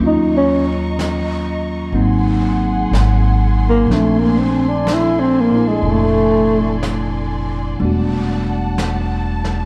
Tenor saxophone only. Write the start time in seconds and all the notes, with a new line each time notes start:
0.06 D#4
0.37 C#4
3.69 A#3
3.93 A3
4.18 A#3
4.39 C4
4.69 D4
4.94 E4
5.19 C4
5.40 A#3
5.68 G#3
5.90 A3